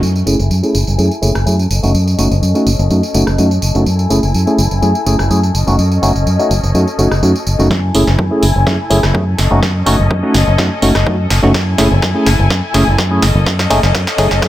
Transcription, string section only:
0.03 1.69 E4 medium
0.03 7.67 A4 medium
0.03 1.69 G#5 medium
1.71 3.85 C#4 medium
1.71 3.85 D#5 medium
3.87 5.53 E4 medium
3.87 5.53 G#5 medium
5.55 7.69 C#4 medium
5.55 7.69 D#5 medium
7.70 9.37 E4 medium
7.70 13.19 A4 medium
7.70 9.37 G#5 medium
9.39 11.52 C#4 medium
9.39 11.52 D#5 medium
11.54 13.21 E4 medium
11.54 13.21 G#5 medium
13.22 14.48 C#4 medium
13.22 14.48 A4 medium
13.22 14.48 D#5 medium

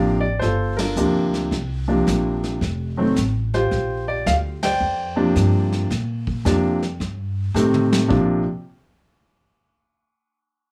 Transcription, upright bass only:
0.00 0.40 A1 medium
0.42 0.95 G1 medium
0.96 1.50 D2 medium
1.51 2.05 C2 medium
2.07 2.60 A#1 medium
2.61 3.15 F1 medium
3.16 3.69 A1 medium
3.71 4.24 A#1 medium
4.26 4.79 D2 medium
4.80 5.34 F2 medium
5.36 5.89 G2 medium
5.90 6.44 A#2 medium
6.45 6.99 F2 medium
7.00 7.53 G2 medium
7.54 8.08 A2 medium
8.10 8.44 A#1 medium

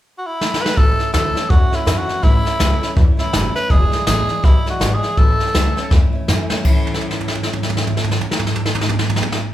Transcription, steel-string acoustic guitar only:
0.76 0.99 A2 medium
0.76 0.99 E3 medium
0.76 0.99 A3 medium
0.76 0.98 C#4 medium
0.76 0.97 E4 medium
0.98 1.12 A3 soft
0.98 1.13 C#4 soft
0.98 1.13 E4 soft
1.12 1.35 A2 medium
1.12 1.35 E3 medium
1.12 1.35 A3 medium
1.12 1.34 C#4 medium
1.12 1.33 E4 medium
1.34 1.49 A3 soft
1.34 1.50 C#4 medium
1.34 1.50 E4 medium
1.49 1.71 E3 medium
1.49 1.72 A3 medium
1.49 1.70 C#4 medium
1.49 1.69 E4 medium
1.70 1.86 A3 soft
1.70 1.86 C#4 medium
1.70 1.86 E4 medium
1.85 2.08 A2 medium
1.85 2.08 E3 medium
1.85 2.09 A3 medium
1.85 2.08 C#4 medium
1.85 2.06 E4 medium
2.07 2.22 A3 soft
2.07 2.22 C#4 soft
2.07 2.23 E4 medium
2.22 2.45 A2 medium
2.22 2.45 E3 medium
2.22 2.45 A3 medium
2.22 2.45 C#4 medium
2.22 2.44 E4 medium
2.45 2.60 A3 soft
2.45 2.60 C#4 soft
2.45 2.60 E4 medium
2.60 2.82 A2 medium
2.60 2.82 E3 medium
2.60 2.82 A3 medium
2.60 2.81 C#4 medium
2.60 2.80 E4 medium
2.81 2.95 A3 medium
2.81 2.96 C#4 medium
2.81 2.96 E4 medium
2.95 3.18 E3 medium
2.95 3.18 A3 medium
2.95 3.17 C#4 medium
2.95 3.16 E4 medium
3.17 3.32 A3 soft
3.17 3.33 C#4 soft
3.17 3.33 E4 medium
3.33 3.55 A2 medium
3.33 3.55 E3 medium
3.33 3.55 A3 medium
3.33 3.55 C#4 medium
3.33 3.53 E4 medium
3.55 3.70 A3 soft
3.55 3.70 C#4 medium
3.55 3.70 E4 medium
3.69 3.91 E2 medium
3.69 3.92 B2 medium
3.69 3.92 E3 medium
3.69 3.92 G#3 medium
3.69 3.91 D4 medium
3.69 3.90 E4 medium
3.91 4.06 E3 soft
3.91 4.06 G#3 soft
3.91 4.07 D4 medium
3.91 4.06 E4 medium
4.06 4.28 E2 medium
4.06 4.29 B2 medium
4.06 4.29 E3 medium
4.06 4.29 G#3 medium
4.06 4.28 D4 medium
4.06 4.26 E4 medium
4.28 4.41 E3 soft
4.28 4.42 G#3 medium
4.28 4.43 D4 medium
4.28 4.43 E4 medium
4.43 4.65 E3 medium
4.43 4.65 G#3 medium
4.43 4.64 D4 medium
4.43 4.64 E4 medium
4.65 4.79 E3 soft
4.65 4.80 G#3 medium
4.65 4.80 D4 medium
4.65 4.80 E4 medium
4.80 5.02 E2 medium
4.80 5.02 B2 medium
4.80 5.02 E3 medium
4.80 5.03 G#3 medium
4.80 5.02 D4 medium
4.80 5.01 E4 medium
5.02 5.16 E3 soft
5.02 5.17 G#3 soft
5.02 5.18 D4 soft
5.02 5.17 E4 medium
5.17 5.39 A2 medium
5.17 5.39 E3 medium
5.17 5.39 A3 medium
5.17 5.39 C#4 medium
5.17 5.37 E4 medium
5.39 5.54 A3 soft
5.39 5.54 C#4 soft
5.39 5.54 E4 medium
5.54 5.76 A2 medium
5.54 5.76 E3 medium
5.54 5.76 A3 medium
5.54 5.76 C#4 medium
5.54 5.75 E4 medium
5.76 5.90 A3 medium
5.76 5.91 C#4 medium
5.76 5.91 E4 medium
5.90 6.13 E3 medium
5.90 6.13 A3 medium
5.90 6.13 C#4 medium
5.90 6.12 E4 medium
6.13 6.28 A3 medium
6.13 6.29 C#4 medium
6.13 6.28 E4 medium
6.28 6.50 A2 medium
6.28 6.50 E3 medium
6.28 6.51 A3 loud
6.28 6.50 C#4 medium
6.28 6.48 E4 loud
6.50 6.65 A3 medium
6.50 6.65 C#4 medium
6.50 6.65 E4 medium
6.63 9.54 A2 medium
6.63 9.54 E3 medium
6.63 9.54 A3 medium
6.68 9.54 C#4 medium
6.68 9.54 E4 loud

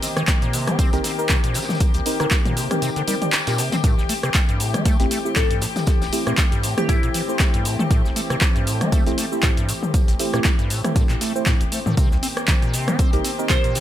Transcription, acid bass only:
0.03 0.07 C4 loud
0.17 0.23 D#3 medium
0.42 0.55 A#2 medium
0.53 0.69 C3 loud
0.68 0.77 C4 loud
0.79 0.90 C4 medium
0.93 0.99 C2 loud
1.04 1.12 C4 medium
1.30 1.37 C3 medium
1.44 1.57 A#2 medium
1.55 1.60 D3 medium
1.95 2.01 C2 loud
2.20 2.26 D3 medium
2.46 2.58 A#2 medium
2.57 2.68 C3 medium
2.82 2.90 C3 medium
2.96 3.03 D3 medium
3.08 3.15 G3 medium
3.47 3.60 A#2 medium
3.58 3.70 C3 medium
3.73 3.76 C4 medium
3.84 3.96 A2 medium
3.98 4.04 A1 loud
4.09 4.14 A3 loud
4.24 4.30 C3 medium
4.49 4.62 G2 medium
4.60 4.76 A2 loud
4.74 4.84 A3 loud
4.86 4.97 A3 medium
5.00 5.06 A1 loud
5.11 5.19 A3 medium
5.36 5.44 A2 medium
5.50 5.63 G2 medium
5.62 5.67 A#2 medium
6.01 6.08 A1 loud
6.27 6.33 A#2 medium
6.52 6.65 G2 medium
6.63 6.75 A2 medium
6.89 6.97 A2 medium
7.03 7.09 A#2 medium
7.14 7.22 E3 medium
7.54 7.67 G2 medium
7.65 7.77 A2 medium
7.79 7.83 A3 medium
7.91 8.02 A2 medium
8.05 8.11 A1 loud
8.16 8.21 A3 loud
8.30 8.36 C3 medium
8.56 8.68 G2 medium
8.67 8.83 A2 loud
8.81 8.90 A3 loud
8.92 9.04 A3 medium
9.06 9.13 A1 loud
9.18 9.26 A3 medium
9.43 9.51 A2 medium
9.57 9.70 G2 medium
9.69 9.73 A#2 medium
10.08 10.14 A1 loud
10.34 10.40 A#2 medium
10.59 10.72 G2 medium
10.70 10.82 A2 medium
10.96 11.03 A2 medium
11.10 11.16 A#2 medium
11.21 11.33 A3 medium
11.46 11.54 A2 loud
11.61 11.64 A1 loud
11.72 11.80 A3 medium
11.86 11.95 A2 medium
11.97 12.09 C3 medium
12.11 12.18 C2 loud
12.23 12.28 C4 loud
12.48 12.56 D#3 medium
12.62 12.75 A#2 medium
12.74 12.89 C3 loud
12.88 12.97 C4 loud
12.99 13.11 C4 medium
13.13 13.20 C2 loud
13.25 13.32 C4 medium
13.50 13.58 C3 medium
13.64 13.77 A#2 medium
13.75 13.80 D3 medium

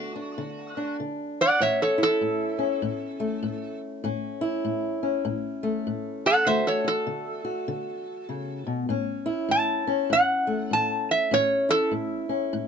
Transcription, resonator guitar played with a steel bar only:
0.00 0.96 F#4 loud
1.41 1.61 D5 medium
1.41 1.60 F#5 medium
1.61 1.80 C#5 medium
1.61 1.81 E5 medium
1.82 2.00 A4 medium
1.82 2.01 C#5 medium
2.03 3.80 A4 loud
6.26 6.46 A4 medium
6.26 6.46 F#5 medium
6.47 6.65 C5 medium
6.47 6.66 E5 loud
6.67 6.86 A4 medium
6.67 6.87 C#5 medium
6.88 8.65 A4 loud
9.51 10.09 A5 loud
10.13 10.70 F#5 loud
10.73 11.08 A5 loud
11.11 11.32 E5 loud
11.34 11.68 C#5 loud
11.71 11.92 A4 loud

